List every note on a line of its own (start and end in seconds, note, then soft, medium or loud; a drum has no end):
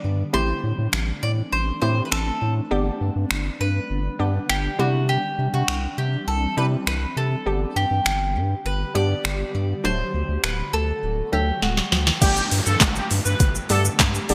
0.00 0.31 D3 medium
0.00 0.18 G3 medium
0.00 0.31 G3 medium
0.00 0.18 B3 medium
0.00 0.31 B3 medium
0.00 0.18 D4 medium
0.00 7.43 D4 medium
0.00 0.19 G4 medium
0.04 0.23 G2 medium
0.33 0.53 A1 loud
0.33 2.69 E3 medium
0.33 1.32 A3 medium
0.33 2.69 A3 medium
0.33 2.69 C4 medium
0.33 1.32 C4 medium
0.33 1.32 E4 medium
0.33 1.32 G4 medium
0.33 0.89 C5 loud
0.64 0.73 A2 medium
0.78 0.88 A2 loud
0.93 1.13 A1 loud
0.93 finger snap loud
1.23 1.42 A2 medium
1.23 1.31 D5 loud
1.52 1.72 A1 loud
1.52 1.80 C5 loud
1.82 2.02 A2 loud
1.82 2.56 A3 medium
1.82 2.56 C4 medium
1.82 2.56 E4 medium
1.82 2.56 G4 medium
1.82 2.05 C5 medium
2.05 2.11 B4 medium
2.11 2.31 A1 medium
2.11 2.53 A4 medium
2.11 finger snap loud
2.42 2.61 A2 medium
2.71 2.91 G1 loud
2.71 4.77 D3 medium
2.71 3.70 G3 medium
2.71 7.42 G3 medium
2.71 3.70 B3 medium
2.71 4.77 B3 medium
2.71 3.70 D4 medium
2.71 3.70 G4 loud
3.01 3.11 G2 medium
3.16 3.25 G2 loud
3.31 3.50 G1 loud
3.31 finger snap loud
3.60 3.80 G2 loud
3.60 4.52 B4 medium
3.90 4.09 G1 loud
4.19 4.39 G2 loud
4.19 4.77 G3 medium
4.19 4.79 B3 medium
4.19 4.79 D4 medium
4.19 4.78 G4 medium
4.49 4.69 G1 loud
4.49 4.79 G4 medium
4.49 finger snap loud
4.79 5.18 C3 medium
4.79 7.44 E3 medium
4.79 5.77 G3 medium
4.79 7.44 C4 medium
4.79 5.78 C4 medium
4.79 5.78 E4 medium
4.79 5.09 F#4 medium
4.79 5.78 G4 medium
5.09 5.53 G4 medium
5.38 5.48 C3 medium
5.53 5.63 C3 loud
5.53 5.98 F#4 medium
5.68 5.87 C2 medium
5.68 finger snap loud
5.98 6.17 C3 medium
5.98 6.29 G4 medium
6.27 6.47 C2 loud
6.27 6.57 A4 medium
6.57 6.77 C3 loud
6.57 7.31 G3 medium
6.57 7.31 C4 medium
6.57 7.31 E4 medium
6.57 7.31 G4 medium
6.57 6.66 B4 medium
6.87 7.06 C2 loud
6.87 7.15 B4 medium
6.87 finger snap loud
7.16 7.36 C3 medium
7.16 7.76 A4 medium
7.46 7.66 G1 loud
7.46 12.18 D3 medium
7.46 8.45 G3 medium
7.46 9.82 G3 medium
7.46 8.45 B3 medium
7.46 9.82 B3 medium
7.46 8.45 D4 medium
7.46 8.45 G4 medium
7.46 9.82 G4 medium
7.76 7.86 G2 medium
7.76 8.68 G4 medium
7.91 8.01 G2 medium
8.06 8.37 G1 loud
8.06 finger snap loud
8.35 8.55 G2 medium
8.65 8.85 G1 loud
8.65 8.93 B4 loud
8.95 9.14 G2 loud
8.95 9.69 G3 medium
8.95 9.69 B3 medium
8.95 9.69 D4 medium
8.95 9.69 G4 medium
8.95 9.51 D5 loud
9.24 9.44 G1 loud
9.24 finger snap loud
9.55 9.74 G2 medium
9.84 10.04 D1 loud
9.84 10.82 F#3 medium
9.84 12.20 F#3 medium
9.84 10.83 A3 medium
9.84 12.20 A3 medium
9.84 10.83 D4 medium
9.84 10.83 F#4 medium
9.84 12.20 F#4 medium
9.84 10.43 C5 loud
10.14 10.24 D2 medium
10.29 10.38 D2 medium
10.43 10.63 D1 medium
10.43 10.74 B4 medium
10.43 finger snap loud
10.73 10.93 D2 medium
10.73 11.29 A4 loud
11.03 11.22 D1 loud
11.32 11.52 D2 loud
11.32 12.06 F#3 medium
11.32 12.06 A3 medium
11.32 12.07 D4 medium
11.32 11.60 G4 medium
11.32 12.07 A4 medium
11.62 11.81 D1 loud
11.62 12.04 F#4 medium
11.62 snare medium
11.77 snare medium
11.92 12.11 D2 loud
11.92 snare medium
12.07 snare medium
12.21 12.41 G1 loud
12.21 14.34 D3 medium
12.21 13.20 G3 medium
12.21 13.20 A3 medium
12.21 14.34 A3 medium
12.21 13.20 B3 medium
12.21 14.34 B3 medium
12.21 13.20 D4 medium
12.21 12.46 G4 loud
12.21 13.20 G4 medium
12.21 14.34 G4 loud
12.21 kick loud
12.21 closed hi-hat medium
12.21 crash loud
12.21 downlifter medium
12.21 shaker medium
12.37 shaker medium
12.51 12.61 G2 medium
12.51 open hi-hat medium
12.51 shaker medium
12.66 12.76 G2 loud
12.66 12.78 A4 medium
12.66 shaker medium
12.80 13.00 G1 loud
12.80 kick loud
12.80 snare loud
12.80 clap loud
12.80 clap medium
12.80 closed hi-hat medium
12.80 shaker medium
12.96 13.08 G4 medium
12.96 shaker medium
13.11 13.21 G2 loud
13.11 open hi-hat medium
13.11 shaker medium
13.25 13.35 G2 loud
13.25 13.50 B4 medium
13.25 shaker medium
13.40 13.60 G1 loud
13.40 kick loud
13.40 closed hi-hat medium
13.40 shaker medium
13.55 shaker medium
13.70 13.89 G2 loud
13.70 14.19 G3 medium
13.70 14.19 A3 medium
13.70 14.20 B3 medium
13.70 14.20 D4 medium
13.70 14.20 G4 medium
13.70 13.82 A4 medium
13.70 clap medium
13.70 open hi-hat medium
13.70 shaker medium
13.85 shaker medium
13.99 14.19 G2 loud
13.99 kick loud
13.99 snare medium
13.99 clap loud
13.99 clap medium
13.99 closed hi-hat medium
13.99 shaker medium
14.15 shaker medium
14.29 14.34 F#1 loud
14.29 14.34 G3 medium
14.29 14.34 A3 medium
14.29 14.34 B3 medium
14.29 14.34 D4 medium
14.29 14.34 G4 medium
14.29 open hi-hat medium
14.29 shaker soft